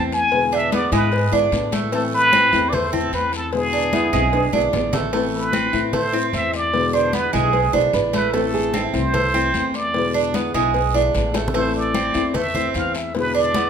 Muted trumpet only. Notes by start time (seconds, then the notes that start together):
0.14 G#5
0.55 E5
0.74 D5
0.95 B4
1.95 A4
2.15 B4
2.69 D5
2.74 C5
2.93 A4
3.14 B4
3.35 A4
3.54 G#4
5.14 A4
5.34 B4
5.94 C5
6.34 E5
6.55 D5
6.94 C5
7.15 B4
7.35 G#4
8.14 B4
8.34 A4
8.94 C5
9.75 D5
11.56 C5
11.76 D5
12.36 E5
12.76 F5
12.96 E5
13.15 B4
13.36 D5